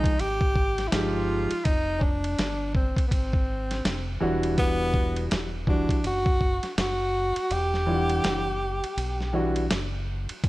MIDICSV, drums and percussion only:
0, 0, Header, 1, 2, 480
1, 0, Start_track
1, 0, Tempo, 731707
1, 1086, Time_signature, 4, 2, 24, 8
1, 6879, End_track
2, 0, Start_track
2, 0, Title_t, "Drums"
2, 26, Note_on_c, 9, 36, 90
2, 36, Note_on_c, 9, 51, 59
2, 92, Note_off_c, 9, 36, 0
2, 102, Note_off_c, 9, 51, 0
2, 128, Note_on_c, 9, 51, 67
2, 193, Note_off_c, 9, 51, 0
2, 268, Note_on_c, 9, 36, 85
2, 333, Note_off_c, 9, 36, 0
2, 364, Note_on_c, 9, 36, 84
2, 430, Note_off_c, 9, 36, 0
2, 512, Note_on_c, 9, 51, 53
2, 516, Note_on_c, 9, 38, 34
2, 578, Note_off_c, 9, 51, 0
2, 581, Note_off_c, 9, 38, 0
2, 606, Note_on_c, 9, 38, 123
2, 607, Note_on_c, 9, 44, 61
2, 607, Note_on_c, 9, 51, 90
2, 671, Note_off_c, 9, 38, 0
2, 673, Note_off_c, 9, 44, 0
2, 673, Note_off_c, 9, 51, 0
2, 988, Note_on_c, 9, 51, 59
2, 1054, Note_off_c, 9, 51, 0
2, 1083, Note_on_c, 9, 51, 71
2, 1085, Note_on_c, 9, 36, 106
2, 1149, Note_off_c, 9, 51, 0
2, 1151, Note_off_c, 9, 36, 0
2, 1320, Note_on_c, 9, 36, 76
2, 1386, Note_off_c, 9, 36, 0
2, 1470, Note_on_c, 9, 51, 52
2, 1536, Note_off_c, 9, 51, 0
2, 1565, Note_on_c, 9, 44, 53
2, 1565, Note_on_c, 9, 51, 75
2, 1569, Note_on_c, 9, 38, 103
2, 1630, Note_off_c, 9, 44, 0
2, 1630, Note_off_c, 9, 51, 0
2, 1634, Note_off_c, 9, 38, 0
2, 1802, Note_on_c, 9, 36, 88
2, 1867, Note_off_c, 9, 36, 0
2, 1945, Note_on_c, 9, 36, 85
2, 1956, Note_on_c, 9, 51, 57
2, 2011, Note_off_c, 9, 36, 0
2, 2022, Note_off_c, 9, 51, 0
2, 2042, Note_on_c, 9, 36, 71
2, 2046, Note_on_c, 9, 51, 73
2, 2108, Note_off_c, 9, 36, 0
2, 2111, Note_off_c, 9, 51, 0
2, 2187, Note_on_c, 9, 36, 91
2, 2252, Note_off_c, 9, 36, 0
2, 2432, Note_on_c, 9, 51, 57
2, 2436, Note_on_c, 9, 38, 34
2, 2498, Note_off_c, 9, 51, 0
2, 2501, Note_off_c, 9, 38, 0
2, 2527, Note_on_c, 9, 38, 116
2, 2528, Note_on_c, 9, 44, 58
2, 2528, Note_on_c, 9, 51, 89
2, 2592, Note_off_c, 9, 38, 0
2, 2594, Note_off_c, 9, 44, 0
2, 2594, Note_off_c, 9, 51, 0
2, 2908, Note_on_c, 9, 51, 58
2, 2974, Note_off_c, 9, 51, 0
2, 3003, Note_on_c, 9, 51, 69
2, 3004, Note_on_c, 9, 36, 99
2, 3069, Note_off_c, 9, 51, 0
2, 3070, Note_off_c, 9, 36, 0
2, 3239, Note_on_c, 9, 36, 85
2, 3305, Note_off_c, 9, 36, 0
2, 3388, Note_on_c, 9, 51, 52
2, 3454, Note_off_c, 9, 51, 0
2, 3484, Note_on_c, 9, 44, 53
2, 3484, Note_on_c, 9, 51, 76
2, 3489, Note_on_c, 9, 38, 111
2, 3550, Note_off_c, 9, 44, 0
2, 3550, Note_off_c, 9, 51, 0
2, 3554, Note_off_c, 9, 38, 0
2, 3721, Note_on_c, 9, 36, 82
2, 3786, Note_off_c, 9, 36, 0
2, 3864, Note_on_c, 9, 36, 83
2, 3874, Note_on_c, 9, 51, 59
2, 3930, Note_off_c, 9, 36, 0
2, 3939, Note_off_c, 9, 51, 0
2, 3964, Note_on_c, 9, 51, 70
2, 4029, Note_off_c, 9, 51, 0
2, 4106, Note_on_c, 9, 36, 99
2, 4172, Note_off_c, 9, 36, 0
2, 4203, Note_on_c, 9, 36, 82
2, 4269, Note_off_c, 9, 36, 0
2, 4349, Note_on_c, 9, 51, 57
2, 4352, Note_on_c, 9, 38, 34
2, 4414, Note_off_c, 9, 51, 0
2, 4418, Note_off_c, 9, 38, 0
2, 4447, Note_on_c, 9, 38, 118
2, 4449, Note_on_c, 9, 44, 60
2, 4449, Note_on_c, 9, 51, 85
2, 4513, Note_off_c, 9, 38, 0
2, 4514, Note_off_c, 9, 44, 0
2, 4514, Note_off_c, 9, 51, 0
2, 4829, Note_on_c, 9, 51, 58
2, 4894, Note_off_c, 9, 51, 0
2, 4924, Note_on_c, 9, 51, 74
2, 4990, Note_off_c, 9, 51, 0
2, 5077, Note_on_c, 9, 38, 40
2, 5142, Note_off_c, 9, 38, 0
2, 5310, Note_on_c, 9, 51, 54
2, 5376, Note_off_c, 9, 51, 0
2, 5405, Note_on_c, 9, 44, 51
2, 5405, Note_on_c, 9, 51, 68
2, 5409, Note_on_c, 9, 38, 112
2, 5471, Note_off_c, 9, 44, 0
2, 5471, Note_off_c, 9, 51, 0
2, 5475, Note_off_c, 9, 38, 0
2, 5797, Note_on_c, 9, 51, 57
2, 5863, Note_off_c, 9, 51, 0
2, 5889, Note_on_c, 9, 51, 72
2, 5955, Note_off_c, 9, 51, 0
2, 6039, Note_on_c, 9, 38, 33
2, 6104, Note_off_c, 9, 38, 0
2, 6270, Note_on_c, 9, 51, 54
2, 6336, Note_off_c, 9, 51, 0
2, 6367, Note_on_c, 9, 38, 110
2, 6368, Note_on_c, 9, 44, 58
2, 6368, Note_on_c, 9, 51, 80
2, 6433, Note_off_c, 9, 38, 0
2, 6434, Note_off_c, 9, 44, 0
2, 6434, Note_off_c, 9, 51, 0
2, 6751, Note_on_c, 9, 51, 57
2, 6817, Note_off_c, 9, 51, 0
2, 6846, Note_on_c, 9, 36, 102
2, 6847, Note_on_c, 9, 51, 66
2, 6879, Note_off_c, 9, 36, 0
2, 6879, Note_off_c, 9, 51, 0
2, 6879, End_track
0, 0, End_of_file